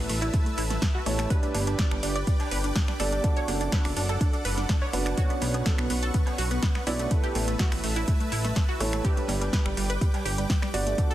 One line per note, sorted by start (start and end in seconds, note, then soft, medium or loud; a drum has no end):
0.00 1.03 E4 medium
0.00 1.03 A4 medium
0.00 1.03 B4 medium
0.00 1.27 B4 medium
0.00 1.29 E5 medium
0.00 1.29 A5 medium
0.00 1.29 E6 medium
0.09 0.30 A1 loud
0.09 0.16 A3 medium
0.09 open hi-hat loud
0.21 0.28 E4 medium
0.21 closed hi-hat medium
0.21 cowbell medium
0.34 0.40 A3 medium
0.34 kick loud
0.34 closed hi-hat medium
0.46 0.52 A3 medium
0.46 closed hi-hat soft
0.58 0.79 A1 medium
0.58 0.64 E4 loud
0.58 open hi-hat loud
0.70 0.77 A3 medium
0.70 snare soft
0.70 closed hi-hat medium
0.82 0.89 A3 medium
0.82 kick loud
0.82 snare loud
0.82 closed hi-hat medium
0.95 1.01 F#4 loud
1.06 1.27 A1 medium
1.06 1.13 A3 medium
1.06 1.28 E4 medium
1.06 1.28 A4 medium
1.06 1.28 C#5 loud
1.06 open hi-hat loud
1.06 high conga medium
1.19 1.25 A3 medium
1.19 finger snap medium
1.19 closed hi-hat medium
1.19 high woodblock medium
1.30 2.97 D4 medium
1.30 2.97 G4 medium
1.30 1.37 B4 loud
1.30 2.97 B4 medium
1.30 3.22 B4 medium
1.30 3.22 D5 medium
1.30 3.22 G5 medium
1.30 5.14 D6 medium
1.30 kick loud
1.30 closed hi-hat medium
1.43 1.49 D4 medium
1.43 closed hi-hat soft
1.54 1.75 G1 loud
1.54 1.61 D4 medium
1.54 open hi-hat loud
1.54 cowbell medium
1.54 high conga medium
1.67 1.73 D4 medium
1.67 closed hi-hat medium
1.67 high woodblock medium
1.79 1.85 D5 loud
1.79 kick loud
1.79 snare loud
1.79 closed hi-hat medium
1.91 2.01 G1 medium
1.91 1.98 D4 medium
1.91 finger snap medium
2.03 2.24 G1 loud
2.03 2.10 D4 medium
2.03 open hi-hat loud
2.16 2.22 D5 medium
2.16 closed hi-hat soft
2.27 2.34 D4 medium
2.27 kick loud
2.27 closed hi-hat medium
2.40 2.46 D4 medium
2.40 closed hi-hat soft
2.40 cowbell medium
2.40 high woodblock medium
2.51 2.72 G1 medium
2.51 2.58 B4 medium
2.51 open hi-hat loud
2.64 2.70 D4 medium
2.64 closed hi-hat medium
2.76 2.82 D4 medium
2.76 kick loud
2.76 snare loud
2.76 closed hi-hat medium
2.88 2.94 D4 medium
2.88 finger snap medium
2.88 snare soft
3.00 3.20 G1 medium
3.00 3.21 D4 medium
3.00 3.21 G4 medium
3.00 3.06 A4 medium
3.00 3.21 D5 loud
3.00 open hi-hat loud
3.00 high conga medium
3.12 3.19 D4 medium
3.12 closed hi-hat medium
3.24 4.91 D4 medium
3.24 3.31 D4 medium
3.24 4.91 F#4 medium
3.24 4.91 A4 medium
3.24 5.16 A4 medium
3.24 7.07 F#5 medium
3.24 kick loud
3.24 closed hi-hat medium
3.37 3.43 C#5 medium
3.37 closed hi-hat soft
3.48 3.69 F#1 loud
3.48 3.55 D4 medium
3.48 open hi-hat loud
3.48 cowbell loud
3.48 high conga medium
3.61 3.67 D4 medium
3.61 closed hi-hat soft
3.72 3.79 B4 medium
3.72 kick loud
3.72 snare loud
3.72 closed hi-hat medium
3.85 3.95 F#1 medium
3.85 3.91 D4 medium
3.85 finger snap medium
3.85 open hi-hat medium
3.97 4.17 F#1 loud
3.97 4.03 D4 medium
3.97 open hi-hat loud
4.09 4.15 A4 loud
4.09 closed hi-hat soft
4.09 cowbell medium
4.21 4.27 D4 medium
4.21 kick loud
4.21 closed hi-hat medium
4.33 4.39 D4 medium
4.33 closed hi-hat soft
4.45 4.66 F#1 medium
4.45 4.52 B4 medium
4.45 open hi-hat loud
4.58 4.64 D4 medium
4.58 snare soft
4.58 closed hi-hat soft
4.69 4.76 D4 medium
4.69 kick loud
4.69 snare loud
4.69 closed hi-hat medium
4.82 4.88 C#5 loud
4.93 5.14 F#1 medium
4.93 5.00 D4 medium
4.93 5.15 D4 medium
4.93 5.15 F#4 medium
4.93 5.15 B4 loud
4.93 open hi-hat loud
4.93 high conga medium
5.05 5.12 D4 medium
5.05 finger snap medium
5.05 closed hi-hat soft
5.05 high woodblock medium
5.18 6.84 B3 medium
5.18 6.84 C#4 medium
5.18 6.84 D4 medium
5.18 6.84 F#4 medium
5.18 5.24 F#4 loud
5.18 10.94 B4 medium
5.18 6.84 C#5 medium
5.18 7.09 C#6 medium
5.18 kick loud
5.18 closed hi-hat medium
5.30 5.36 B3 medium
5.30 closed hi-hat soft
5.42 5.62 B1 loud
5.42 5.48 B3 medium
5.42 open hi-hat loud
5.42 cowbell medium
5.42 high conga medium
5.54 5.60 B3 medium
5.54 closed hi-hat medium
5.54 high woodblock medium
5.66 5.73 A4 loud
5.66 kick loud
5.66 snare loud
5.66 closed hi-hat medium
5.78 5.88 B1 medium
5.78 5.85 B3 medium
5.78 finger snap medium
5.90 6.11 B1 medium
5.90 5.97 B3 medium
5.90 open hi-hat loud
6.03 6.09 A4 loud
6.03 closed hi-hat soft
6.14 6.21 B3 medium
6.14 kick loud
6.14 closed hi-hat medium
6.26 6.33 B3 medium
6.26 closed hi-hat soft
6.26 cowbell medium
6.26 high woodblock medium
6.38 6.59 B1 medium
6.38 6.45 F#4 medium
6.38 open hi-hat loud
6.51 6.57 B3 medium
6.51 closed hi-hat soft
6.63 6.69 B3 medium
6.63 kick loud
6.63 snare loud
6.63 closed hi-hat medium
6.75 6.81 B3 medium
6.75 finger snap medium
6.75 snare soft
6.87 7.08 B1 medium
6.87 7.08 B3 medium
6.87 7.08 C#4 medium
6.87 7.08 D4 medium
6.87 6.93 E4 medium
6.87 7.08 F#4 medium
6.87 7.08 D5 loud
6.87 open hi-hat loud
6.87 high conga medium
6.99 7.06 A3 medium
6.99 closed hi-hat medium
7.11 7.18 A3 medium
7.11 8.78 E4 medium
7.11 8.78 A4 medium
7.11 8.78 B4 medium
7.11 9.03 E5 medium
7.11 9.03 A5 medium
7.11 9.03 E6 medium
7.11 kick loud
7.11 closed hi-hat medium
7.24 7.30 G4 medium
7.24 closed hi-hat soft
7.35 7.56 A1 loud
7.35 7.42 A3 medium
7.35 open hi-hat loud
7.35 cowbell medium
7.35 high conga medium
7.48 7.54 A3 medium
7.48 closed hi-hat medium
7.59 7.66 F#4 loud
7.59 kick loud
7.59 snare loud
7.59 closed hi-hat medium
7.72 7.82 A1 medium
7.72 7.78 A3 medium
7.72 finger snap medium
7.72 open hi-hat medium
7.84 8.04 A1 medium
7.84 7.90 A3 medium
7.84 open hi-hat loud
7.96 8.02 E4 loud
7.96 closed hi-hat medium
7.96 cowbell medium
8.08 8.14 A3 medium
8.08 kick loud
8.08 closed hi-hat medium
8.20 8.26 A3 medium
8.20 closed hi-hat soft
8.32 8.53 A1 medium
8.32 8.39 E4 loud
8.32 open hi-hat loud
8.45 8.51 A3 medium
8.45 snare soft
8.45 closed hi-hat medium
8.56 8.63 A3 medium
8.56 kick loud
8.56 snare loud
8.56 closed hi-hat medium
8.69 8.75 F#4 medium
8.80 9.01 A1 medium
8.80 8.87 A3 medium
8.80 9.02 E4 medium
8.80 9.02 A4 medium
8.80 9.02 C#5 loud
8.80 open hi-hat loud
8.80 high conga medium
8.93 8.99 A3 medium
8.93 finger snap medium
8.93 closed hi-hat medium
8.93 high woodblock medium
9.04 10.71 D4 medium
9.04 10.71 G4 medium
9.04 9.11 G4 loud
9.04 10.71 B4 medium
9.04 10.96 G5 medium
9.04 11.14 D6 medium
9.04 kick loud
9.04 closed hi-hat medium
9.17 9.23 G3 medium
9.17 closed hi-hat soft
9.28 9.49 G1 loud
9.28 9.35 G3 medium
9.28 open hi-hat loud
9.28 cowbell medium
9.28 high conga medium
9.41 9.47 G3 medium
9.41 closed hi-hat medium
9.41 high woodblock medium
9.53 9.60 B4 medium
9.53 kick loud
9.53 snare loud
9.53 closed hi-hat medium
9.65 9.75 G1 medium
9.65 9.72 G3 medium
9.65 finger snap medium
9.77 9.98 G1 loud
9.77 9.84 G3 medium
9.77 open hi-hat loud
9.90 9.96 B4 medium
9.90 closed hi-hat medium
10.01 10.08 G3 medium
10.01 kick loud
10.01 closed hi-hat medium
10.14 10.20 G3 medium
10.14 closed hi-hat soft
10.14 cowbell medium
10.14 high woodblock medium
10.25 10.46 G1 medium
10.25 10.32 G4 medium
10.25 open hi-hat loud
10.38 10.44 G3 medium
10.38 closed hi-hat medium
10.50 10.56 G3 medium
10.50 kick loud
10.50 snare loud
10.50 closed hi-hat medium
10.62 10.68 G3 medium
10.62 finger snap medium
10.62 snare soft
10.74 10.95 G1 medium
10.74 10.95 D4 medium
10.74 10.81 F#4 loud
10.74 10.95 G4 medium
10.74 10.95 D5 loud
10.74 open hi-hat loud
10.74 high conga medium
10.87 10.93 A3 medium
10.87 closed hi-hat medium
10.98 11.05 A3 medium
10.98 11.14 D4 medium
10.98 11.14 F#4 medium
10.98 11.14 A4 medium
10.98 11.14 F#5 medium
10.98 kick loud
10.98 closed hi-hat medium
11.11 11.14 A4 loud
11.11 closed hi-hat soft